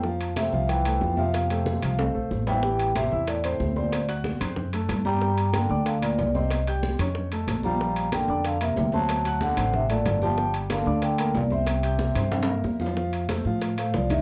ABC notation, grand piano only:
X:1
M:4/4
L:1/8
Q:1/4=186
K:F
V:1 name="Grand piano"
[F,Ff]2 [A,Ac] [F,Ff]2 [A,Ac] [F,Ff] [F,Ff]- | [F,Ff] [A,Ac]2 [F,Ff] [A,Ac] [A,Ac]2 [Cce] | [G,Gg]2 [Ccc'] [Eee']2 [Ccc']2 [Ccc']- | [Ccc'] [^F^f^f']2 [Ccc']2 [A,Aa]2 [G,Gg] |
[G,Gg]2 [B,Bb] [Ddd']2 [B,Bb]2 [Ccc']- | [Ccc'] [Ggg']2 [_D_d_d']2 [A,Aa]2 [F,Ff] | [F,Ff]2 [B,Bb] [Ddd']2 [B,Bb]2 [Ccc']- | [Ccc'] [^F^f^f']2 [Ccc']2 [A,Aa]2 [G,Gg] |
[G,Gg]2 [B,Bb] [Ddd']2 [B,Bb]2 [Ccc']- | [Ccc'] [Ggg']2 [Ccc']2 [B,Bb]2 [F,Ff] | [F,Ff]2 [A,Ac] [F,Ff]2 [A,Ac] [F,Ff] [_E,_E_e] |]